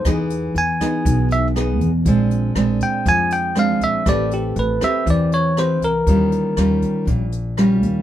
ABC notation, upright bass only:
X:1
M:4/4
L:1/8
Q:1/4=120
K:Am
V:1 name="Upright bass" clef=bass
E,,2 E,, z B,,,3 E,, | _B,,,2 B,,, z F,,3 B,,, | A,,,2 A,,, z E,,3 C,, | _E,,2 E,, z _B,,,3 E,, |]